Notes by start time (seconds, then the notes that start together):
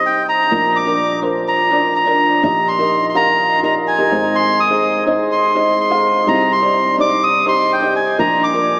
Already playing: C2 C3 D#4 G4 C5 D#5
0.06 G5
0.29 A#5
0.51 A#1 A#2 D4 F4 A#4 D5
0.76 D6
0.86 D4 F4 A#4 D5
1.22 D4 F4 A#4 C5
1.48 A#5
1.71 D4 F4 A#4 D5
1.96 A#5
2.06 D4 F4 A#4 D5
2.43 A#1 A#2 D#4 G4 A#4 D#5 A#5
2.68 C6
2.79 D#4 G4 A#4 D#5
3.09 C6
3.15 D#4 G4 A#4 F5 A#5
3.63 D#4 G4 A#4 D#5 A#5
3.88 G#5
3.98 D#4 G4 A#4 D#5
4.11 G#1 G#2 D#4 G#4 C5 D#5
4.35 C6
4.60 D#6
4.70 D#4 G#4 C5 D#5
5.07 D#4 G#4 C5 D#5
5.32 C6
5.55 D#4 G#4 C5 D#5
5.81 C6
5.90 D#4 G#4 C5 F5
6.27 C2 C3 D#4 G4 C5 D#5 A#5
6.52 C6
6.62 D#4 G4 C5 D5
6.98 D#4 G4 C5 D5 D6
7.24 D#6
7.46 D#4 G4 C5 D#5 C6
7.73 G5
7.82 D#4 G4 C5 D#5
7.96 G#5
8.18 A#1 A#2 D4 F4 A#4 D5 A#5
8.43 D6
8.53 D4 F4 A#4 D5